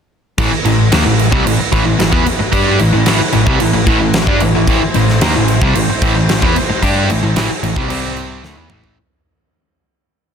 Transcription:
0.38 A1 A2 E3 A3 E4 B4, kick, crash
0.52 muted picked electric bass stroke, muted distorted electric guitar stroke
0.65 A1 A2 E3, crash
0.92 D#2 D#3 A#3, snare, crash
1.05 A1 A2 E3
1.19 crash
1.32 C2 C3 G3, kick
1.45 A1 A2 E3, crash
1.59 muted distorted electric guitar stroke, muted picked electric bass stroke
1.72 A1 A2 E3, kick, crash
1.85 A1 A2 E3
1.98 A1 A2 E3, snare, crash
2.12 E2 E3 B3, kick
2.25 muted distorted electric guitar stroke, muted picked electric bass stroke, crash
2.40 muted distorted electric guitar stroke, muted picked electric bass stroke
2.52 G2 G3 D4 G4, kick, crash
2.79 A1 A2 E3, crash
2.93 A1 A2 E3
3.05 A1 A2 E3, snare, crash
3.19 muted distorted electric guitar stroke, muted picked electric bass stroke
3.32 A1 A2 E3, crash
3.46 C2 C3 G3, kick
3.60 A1 A2 E3, crash
3.73 A1 A2 E3
3.85 A1 A2 E3, kick, crash
3.99 A1 A2 E3
4.13 snare, crash
4.26 G2 G3 D4, kick
4.40 A1 A2 E3, crash
4.55 A1 A2 E3
4.67 A1 A2 E3 C5, kick, crash
4.81 muted distorted electric guitar stroke, muted picked electric bass stroke
4.94 A1 A2 E3, crash
5.09 snare
5.21 D#2 D#3 A#3, snare, crash
5.36 A1 A2 E3
5.48 crash
5.62 C2 C3 G3, kick
5.75 A1 A2 E3, crash
5.89 muted picked electric bass stroke, muted distorted electric guitar stroke
6.02 A1 A2 E3, kick, crash
6.16 A1 A2 E3
6.29 A1 A2 E3, snare, crash
6.42 E2 E3 B3, kick
6.56 muted picked electric bass stroke, muted distorted electric guitar stroke, crash
6.70 muted distorted electric guitar stroke, muted picked electric bass stroke
6.83 G2 G3 D4 G4, kick, crash
7.09 A1 A2 E3, crash
7.22 A1 A2 E3
7.36 A1 A2 E3, snare, crash
7.49 muted distorted electric guitar stroke, muted picked electric bass stroke
7.63 A1 A2 E3, crash
7.76 C2 C3 G3, kick
7.89 C2 C3 G3 C4 G4 D5, crash
8.17 crash
8.43 D2 D3 A3 E4 B4, snare
8.56 E2 E3 B3
8.70 A1 A2 E3 A3, mid tom
8.84 floor tom

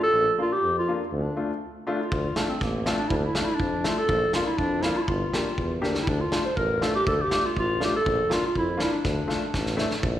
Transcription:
0.03 A4
0.13 A#1
0.38 A#3 D4 F4
0.53 G4
0.62 F2
0.79 F4
0.88 A#3 D4 F4
1.12 D2 D4
1.36 A3 D4 F4
1.87 A3 D4 F4
2.01 F4
2.12 D2, kick
2.36 A3 D4 F4, snare
2.49 C4
2.61 A1 A#3, kick, snare
2.86 A3 C4 D4 F4, snare
2.98 D4
3.09 D2 E4, kick
3.17 D4
3.25 E4
3.35 A3 D4 F4, snare
3.45 E4
3.55 D4
3.60 F2, kick
3.84 A3 D4 E4 F4, snare
3.98 A4
4.09 A#1, kick
4.33 A#3 D4 F4, snare
4.47 E4
4.58 F2 D4, kick
4.82 A#3 D4 E4 F4, snare
4.97 F4
5.02 E4
5.08 G1 F4, kick
5.33 A#3 D4 G4, snare
5.58 E2, kick
5.82 D2 A#3 D4 G4, snare
5.95 snare
6.03 E4
6.07 D2 D4, kick
6.21 F4
6.32 A3 D4 F4, snare
6.46 C5
6.56 A1 A#4, kick
6.82 A3 D4 F4 A4, snare
6.95 G4
7.06 D2 A4, kick
7.21 G4
7.31 A3 D4 F4, snare
7.46 F4
7.56 A1 F4, kick
7.80 A3 D4 F4, snare
7.85 G4
7.96 A4
8.06 A#1, kick
8.30 A#3 D4 F4, snare
8.47 F4
8.55 F2 E4, kick
8.77 A#3 D4 F4, snare
8.82 E4
8.93 D4
9.04 D2, kick, snare
9.28 A3 D4 F4, snare
9.54 A1, kick, snare
9.66 snare
9.77 A3 D4 E4, snare
9.91 snare
10.03 A#1, kick

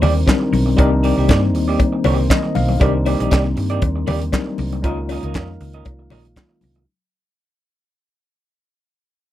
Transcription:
Already playing: D#3 G3 A#3 C4 D4 D#4 A#4
0.02 D#2 A#3 D#4 G4 D5, open hi-hat, cowbell, muted conga, low conga
0.15 muted clean electric guitar stroke
0.26 G3 C4 D4 D#4 A#4, muted clean electric guitar stroke, kick, snare, clap, closed hi-hat, cowbell, high conga
0.40 muted clean electric guitar stroke
0.52 B1, open hi-hat, high conga
0.66 muted clean electric guitar stroke
0.76 C2 G3 A#3 C4 D4 D#4 G4 A#4 D5, kick, closed hi-hat, cowbell, muted conga
0.91 muted clean electric guitar stroke
1.03 A#3 D#4 G4 D5, open hi-hat
1.17 C2 A#3 D#4 G4 D5
1.28 G2 A#3 D#4 G4 D5, kick, snare, clap, closed hi-hat, cowbell, high conga
1.42 muted clean electric guitar stroke
1.54 D#2, muted clean electric guitar stroke, open hi-hat
1.68 A#3 D#4 G4 D5
1.79 kick, closed hi-hat, cowbell, muted conga
1.93 muted clean electric guitar stroke
2.04 C2 A#3 D#4 G4 C5 D5, open hi-hat, cowbell, muted conga, low conga
2.18 muted clean electric guitar stroke
2.30 D#5, muted clean electric guitar stroke, kick, snare, clap, closed hi-hat, cowbell, high conga
2.43 muted clean electric guitar stroke
2.55 B1 F5, open hi-hat, high conga
2.68 muted clean electric guitar stroke, high conga
2.80 C2 D#3 G3 A#3 C4 D4 D#4 G4 A#4 D5, kick, closed hi-hat, cowbell, muted conga
2.94 muted clean electric guitar stroke
3.06 A#3 D#4 G4 D5, open hi-hat, cowbell
3.19 A#1 A#3 D#4 G4 D5, closed hi-hat
3.30 C2 A#3 D#4 G4 D5, kick, snare, clap, closed hi-hat, cowbell, high conga
3.44 muted clean electric guitar stroke
3.56 G2, muted clean electric guitar stroke, open hi-hat
3.70 A#3 D#4 G4 D5, closed hi-hat
3.82 D#2, kick, closed hi-hat, cowbell, muted conga
3.96 muted clean electric guitar stroke
4.07 D#2 A#3 D#4 G4 D5, open hi-hat, cowbell, muted conga, low conga
4.21 muted clean electric guitar stroke, closed hi-hat
4.32 G3 C4 D4 D#4 A#4, muted clean electric guitar stroke, kick, snare, clap, closed hi-hat, cowbell, high conga
4.46 muted clean electric guitar stroke
4.58 C2, open hi-hat, high conga
4.72 muted clean electric guitar stroke, closed hi-hat
4.82 C#2 D#3 G#3 C#4 D#4 F4 A#4, kick, closed hi-hat, cowbell
4.86 D#5
4.99 muted clean electric guitar stroke
5.09 C#4 F4 A#4 D#5, open hi-hat, cowbell
5.23 C#2 C#4 F4 A#4 D#5, closed hi-hat
5.34 F2 C#4 F4 A#4 D#5, kick, snare, clap, closed hi-hat, cowbell, high conga
5.49 muted clean electric guitar stroke
5.60 C#2, muted clean electric guitar stroke, open hi-hat
5.73 C#4 F4 A#4 D#5, closed hi-hat
5.85 C2, kick, closed hi-hat, cowbell, muted conga
5.99 muted clean electric guitar stroke
6.10 A#1 C#4 F4 A#4 D#5, open hi-hat, cowbell, muted conga, low conga
6.24 muted clean electric guitar stroke, closed hi-hat
6.36 muted clean electric guitar stroke, kick, snare, clap, closed hi-hat, cowbell, high conga
6.49 muted clean electric guitar stroke
6.61 C2, open hi-hat, high conga
6.75 muted clean electric guitar stroke, closed hi-hat

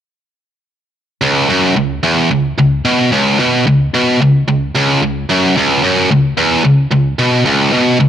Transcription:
1.23 C#2
1.50 F#2
1.77 C#2
2.03 E2
2.31 C#2
2.59 C#2
2.85 B2
3.13 C#2
3.40 B2
3.67 C#2
3.94 B2
4.21 C#2
4.48 C#2
4.76 C#2
5.03 C#2
5.30 F#2
5.56 C#2
5.83 F#2
6.11 C#2
6.37 E2
6.65 C#2
6.92 C#2
7.20 B2
7.47 C#2
7.74 B2
8.01 C#2

